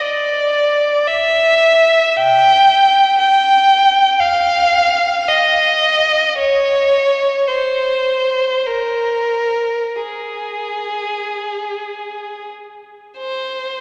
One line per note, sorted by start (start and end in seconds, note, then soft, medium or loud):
0.01 1.09 D5 medium
1.08 2.16 E5 medium
2.16 3.17 G5 medium
3.18 4.20 G5 medium
4.21 5.28 F5 medium
5.27 6.39 D#5 medium
6.38 7.46 C#5 medium
7.47 8.68 C5 medium
8.66 9.96 A#4 medium
9.96 12.51 G#4 soft
13.18 13.81 C5 medium